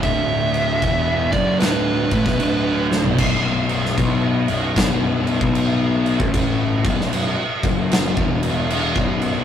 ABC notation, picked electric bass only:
X:1
M:4/4
L:1/16
Q:"Swing" 1/4=76
K:Bm
V:1 name="Picked electric bass" clef=bass
D,,,4 E,,,2 F,,,2 D,,,2 A,,, B,,,, D,,,3 B,,,, | B,,,,4 B,,,2 B,,,,2 B,,,,3 B,,,4 A,,,- | A,,,2 B,,,, B,,,,2 z F,,,3 E,,,4 B,,,,3 |]